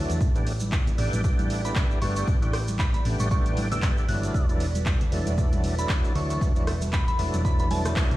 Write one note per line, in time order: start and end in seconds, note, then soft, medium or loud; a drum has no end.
0.00 0.19 E3 medium
0.00 0.19 F#3 medium
0.00 0.19 A3 medium
0.00 0.20 D4 loud
0.00 0.17 F#4 medium
0.00 0.17 A4 medium
0.00 0.17 B4 medium
0.00 0.19 C#5 medium
0.10 0.18 E2 medium
0.10 closed hi-hat medium
0.10 maracas medium
0.21 0.82 A1 medium
0.21 4.30 E4 medium
0.21 4.30 G4 medium
0.21 8.17 B4 medium
0.21 6.37 D5 medium
0.21 kick loud
0.21 maracas medium
0.35 0.52 A3 medium
0.35 0.52 B3 medium
0.35 0.52 D4 medium
0.35 0.53 G4 medium
0.35 closed hi-hat soft
0.35 maracas soft
0.47 open hi-hat loud
0.60 closed hi-hat medium
0.60 high conga medium
0.60 maracas medium
0.72 kick loud
0.72 clap loud
0.72 maracas medium
0.87 closed hi-hat soft
0.87 low conga medium
0.87 maracas soft
0.98 1.10 A1 medium
0.98 1.21 A3 medium
0.98 1.21 B3 medium
0.98 1.22 D4 medium
0.98 1.22 G4 loud
0.98 open hi-hat medium
1.13 1.72 A1 medium
1.13 closed hi-hat medium
1.13 high conga medium
1.13 maracas medium
1.24 1.61 A3 medium
1.24 1.61 B3 medium
1.24 1.61 D4 medium
1.24 1.61 G4 loud
1.24 kick loud
1.24 maracas medium
1.39 closed hi-hat medium
1.39 high conga medium
1.39 maracas soft
1.50 open hi-hat loud
1.65 1.99 A3 medium
1.65 1.99 B3 medium
1.65 1.99 D4 medium
1.65 1.99 G4 loud
1.65 1.75 B5 medium
1.65 closed hi-hat medium
1.65 maracas medium
1.75 1.87 A1 medium
1.75 kick loud
1.75 clap loud
1.75 maracas medium
1.91 maracas soft
2.01 2.22 G1 loud
2.01 2.39 A3 medium
2.01 2.39 B3 medium
2.01 2.39 D4 medium
2.01 2.39 G4 medium
2.01 2.11 C#6 medium
2.01 open hi-hat medium
2.01 low conga medium
2.16 2.24 C#6 medium
2.16 closed hi-hat medium
2.16 maracas medium
2.28 2.89 A1 loud
2.28 kick loud
2.28 maracas medium
2.42 2.59 A3 medium
2.42 2.59 B3 medium
2.42 2.59 D4 medium
2.42 2.60 G4 medium
2.42 closed hi-hat soft
2.42 maracas soft
2.53 cross-stick medium
2.53 open hi-hat loud
2.68 closed hi-hat medium
2.68 high conga medium
2.68 maracas medium
2.79 2.89 B5 medium
2.79 kick loud
2.79 clap loud
2.79 maracas medium
2.94 3.01 B5 medium
2.94 closed hi-hat medium
2.94 low conga medium
2.94 maracas soft
3.05 3.17 A1 loud
3.05 3.28 A3 medium
3.05 3.28 B3 medium
3.05 3.28 D4 medium
3.05 3.29 G4 loud
3.05 open hi-hat medium
3.19 3.79 A1 medium
3.19 3.27 C#6 medium
3.19 closed hi-hat medium
3.19 high conga medium
3.19 maracas medium
3.31 3.68 A3 medium
3.31 3.68 B3 medium
3.31 3.68 D4 medium
3.31 3.68 G4 loud
3.31 3.41 C#6 medium
3.31 kick loud
3.31 maracas medium
3.46 closed hi-hat medium
3.46 maracas soft
3.57 open hi-hat loud
3.57 high conga medium
3.71 4.06 A3 medium
3.71 4.06 B3 medium
3.71 4.06 D4 medium
3.71 4.06 G4 loud
3.71 3.82 E6 medium
3.71 closed hi-hat medium
3.71 low conga medium
3.71 maracas medium
3.82 3.94 A1 medium
3.82 kick loud
3.82 clap loud
3.82 maracas medium
3.98 maracas soft
4.08 4.29 G1 loud
4.08 4.46 E3 medium
4.08 4.46 F#3 medium
4.08 4.46 A3 medium
4.08 4.46 D4 loud
4.08 4.40 F#6 medium
4.08 open hi-hat medium
4.08 low conga medium
4.23 closed hi-hat medium
4.23 maracas medium
4.34 8.17 F#4 medium
4.34 8.17 A4 medium
4.34 kick loud
4.34 maracas medium
4.49 4.66 E3 medium
4.49 4.66 F#3 medium
4.49 4.66 A3 medium
4.49 4.66 D4 loud
4.49 closed hi-hat soft
4.49 maracas soft
4.60 open hi-hat loud
4.75 closed hi-hat medium
4.75 high conga medium
4.75 maracas medium
4.86 kick loud
4.86 clap loud
4.86 maracas medium
5.01 closed hi-hat medium
5.01 low conga medium
5.01 maracas soft
5.12 5.23 E1 loud
5.12 5.35 E3 medium
5.12 5.35 F#3 medium
5.12 5.35 A3 medium
5.12 5.35 D4 loud
5.12 open hi-hat medium
5.26 5.86 E1 medium
5.26 closed hi-hat medium
5.26 high conga medium
5.26 maracas medium
5.37 5.75 E3 medium
5.37 5.75 F#3 medium
5.37 5.75 A3 medium
5.37 5.75 D4 loud
5.37 kick loud
5.37 maracas medium
5.53 closed hi-hat medium
5.53 high conga medium
5.53 maracas soft
5.64 open hi-hat loud
5.78 6.13 E3 medium
5.78 6.13 F#3 medium
5.78 6.13 A3 medium
5.78 6.13 D4 medium
5.78 5.89 B5 medium
5.78 closed hi-hat medium
5.78 maracas medium
5.89 6.01 E1 loud
5.89 kick loud
5.89 clap loud
5.89 maracas medium
6.04 maracas soft
6.15 6.36 D2 loud
6.15 6.52 E3 medium
6.15 6.53 F#3 medium
6.15 6.53 A3 medium
6.15 6.53 D4 loud
6.15 6.25 C#6 medium
6.15 open hi-hat medium
6.15 low conga medium
6.30 6.37 C#6 medium
6.30 closed hi-hat medium
6.30 maracas medium
6.41 7.02 E1 loud
6.41 8.17 E5 medium
6.41 kick loud
6.41 maracas medium
6.56 6.73 E3 medium
6.56 6.73 F#3 medium
6.56 6.73 A3 medium
6.56 6.73 D4 loud
6.56 closed hi-hat soft
6.56 maracas soft
6.67 cross-stick medium
6.67 open hi-hat loud
6.81 closed hi-hat medium
6.81 high conga medium
6.81 maracas medium
6.93 7.03 B5 medium
6.93 kick loud
6.93 clap loud
6.93 maracas medium
7.08 7.15 B5 medium
7.08 closed hi-hat medium
7.08 low conga medium
7.08 maracas soft
7.19 7.30 E1 loud
7.19 7.42 E3 medium
7.19 7.42 F#3 medium
7.19 7.42 A3 medium
7.19 7.42 D4 loud
7.19 open hi-hat medium
7.34 7.92 E1 medium
7.34 closed hi-hat medium
7.34 high conga medium
7.34 maracas medium
7.44 7.68 E3 medium
7.44 7.68 F#3 medium
7.44 7.69 A3 medium
7.44 7.69 D4 loud
7.44 7.54 B5 medium
7.44 kick loud
7.44 maracas medium
7.59 7.67 B5 medium
7.59 closed hi-hat medium
7.59 maracas soft
7.70 8.17 E3 medium
7.70 8.17 F#3 medium
7.70 8.17 A3 medium
7.70 8.17 D4 loud
7.70 8.11 A5 medium
7.70 open hi-hat loud
7.70 high conga medium
7.85 cross-stick medium
7.85 closed hi-hat medium
7.85 low conga medium
7.85 maracas medium
7.96 kick loud
7.96 clap loud
7.96 maracas medium
8.11 8.17 B1 medium
8.11 closed hi-hat soft
8.11 maracas soft